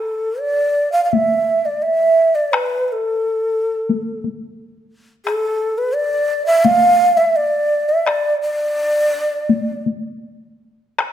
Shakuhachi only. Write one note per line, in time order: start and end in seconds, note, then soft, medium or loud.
0.00 0.41 A4 medium
0.40 0.92 D5 medium
0.92 1.04 F5 medium
1.04 1.14 F5 medium
1.12 1.67 E5 medium
1.65 1.84 D5 medium
1.82 2.37 E5 medium
2.35 2.54 D5 medium
2.53 2.88 B4 medium
2.88 2.93 B4 medium
2.92 4.25 A4 medium
5.25 5.79 A4 medium
5.78 5.96 B4 medium
5.95 6.46 D5 loud
6.46 6.66 E5 loud
6.65 7.19 F5 loud
7.17 7.38 E5 loud
7.36 7.90 D5 loud
7.89 8.08 E5 loud
8.06 8.41 D5 loud
8.42 9.82 D5 medium